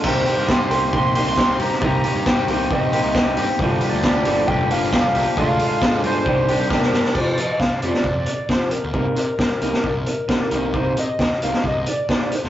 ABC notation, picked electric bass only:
X:1
M:4/4
L:1/16
Q:1/4=135
K:Cm
V:1 name="Picked electric bass" clef=bass
C,,2 z G,,3 C,,2 B,,,3 C,,3 G,, z | C,,2 z G,,3 C,,2 B,,,3 C,,3 G,, z | G,,,2 z D,,3 G,,,2 F,,,3 G,,,3 C,, z | D,,2 z A,,3 G,,2 C,,3 C,,3 G,, z |
F,, z F, z C,, z F,, z F,,2 z4 z D,, | C,, z C, z G,, z C,, z C,,2 z4 C,,2- | C,,2 C, z E,, z C,, z C,,2 z4 z F,,, |]